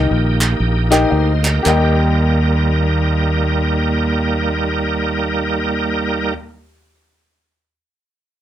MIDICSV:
0, 0, Header, 1, 5, 480
1, 0, Start_track
1, 0, Key_signature, -3, "major"
1, 0, Tempo, 483481
1, 604, Tempo, 525855
1, 1564, Time_signature, 4, 2, 24, 8
1, 1564, Tempo, 558140
1, 7374, End_track
2, 0, Start_track
2, 0, Title_t, "Grand piano"
2, 0, Program_c, 0, 0
2, 0, Note_on_c, 0, 51, 70
2, 0, Note_on_c, 0, 63, 82
2, 0, Note_on_c, 0, 67, 80
2, 0, Note_on_c, 0, 70, 78
2, 0, Note_on_c, 0, 75, 83
2, 0, Note_on_c, 0, 79, 89
2, 119, Note_off_c, 0, 63, 0
2, 121, Note_off_c, 0, 67, 0
2, 122, Note_off_c, 0, 70, 0
2, 127, Note_off_c, 0, 75, 0
2, 130, Note_off_c, 0, 79, 0
2, 373, Note_off_c, 0, 51, 0
2, 876, Note_on_c, 0, 63, 92
2, 881, Note_on_c, 0, 67, 86
2, 882, Note_on_c, 0, 70, 81
2, 888, Note_on_c, 0, 75, 83
2, 893, Note_on_c, 0, 79, 95
2, 1045, Note_off_c, 0, 75, 0
2, 1058, Note_on_c, 0, 75, 73
2, 1215, Note_off_c, 0, 63, 0
2, 1217, Note_off_c, 0, 67, 0
2, 1218, Note_off_c, 0, 70, 0
2, 1223, Note_off_c, 0, 79, 0
2, 1523, Note_off_c, 0, 75, 0
2, 1534, Note_on_c, 0, 67, 79
2, 1553, Note_on_c, 0, 70, 75
2, 1569, Note_on_c, 0, 39, 80
2, 1580, Note_on_c, 0, 75, 77
2, 1596, Note_on_c, 0, 79, 88
2, 5579, Note_off_c, 0, 67, 0
2, 5596, Note_off_c, 0, 70, 0
2, 5612, Note_off_c, 0, 39, 0
2, 5623, Note_off_c, 0, 75, 0
2, 5639, Note_off_c, 0, 79, 0
2, 7374, End_track
3, 0, Start_track
3, 0, Title_t, "Tonewheel organ"
3, 0, Program_c, 1, 16
3, 0, Note_on_c, 1, 58, 80
3, 0, Note_on_c, 1, 63, 68
3, 0, Note_on_c, 1, 67, 88
3, 861, Note_off_c, 1, 67, 0
3, 874, Note_on_c, 1, 75, 64
3, 880, Note_on_c, 1, 72, 52
3, 1044, Note_off_c, 1, 72, 0
3, 1053, Note_off_c, 1, 75, 0
3, 1055, Note_on_c, 1, 72, 74
3, 1347, Note_off_c, 1, 72, 0
3, 1352, Note_on_c, 1, 70, 65
3, 1359, Note_on_c, 1, 67, 53
3, 1526, Note_off_c, 1, 63, 0
3, 1527, Note_off_c, 1, 58, 0
3, 1534, Note_off_c, 1, 70, 0
3, 1539, Note_on_c, 1, 63, 78
3, 1545, Note_on_c, 1, 70, 88
3, 1546, Note_on_c, 1, 58, 80
3, 1547, Note_on_c, 1, 55, 85
3, 1830, Note_off_c, 1, 67, 0
3, 5583, Note_off_c, 1, 63, 0
3, 5589, Note_off_c, 1, 70, 0
3, 5591, Note_off_c, 1, 55, 0
3, 5591, Note_off_c, 1, 58, 0
3, 7374, End_track
4, 0, Start_track
4, 0, Title_t, "Fingered electric bass"
4, 0, Program_c, 2, 33
4, 108, Note_on_c, 2, 34, 92
4, 524, Note_off_c, 2, 34, 0
4, 596, Note_on_c, 2, 34, 92
4, 996, Note_off_c, 2, 34, 0
4, 1070, Note_on_c, 2, 38, 87
4, 1490, Note_off_c, 2, 38, 0
4, 1563, Note_on_c, 2, 39, 101
4, 5606, Note_off_c, 2, 39, 0
4, 7374, End_track
5, 0, Start_track
5, 0, Title_t, "Drums"
5, 407, Note_on_c, 9, 39, 102
5, 506, Note_off_c, 9, 39, 0
5, 892, Note_on_c, 9, 39, 101
5, 983, Note_off_c, 9, 39, 0
5, 1370, Note_on_c, 9, 39, 98
5, 1461, Note_off_c, 9, 39, 0
5, 1562, Note_on_c, 9, 39, 88
5, 1648, Note_off_c, 9, 39, 0
5, 7374, End_track
0, 0, End_of_file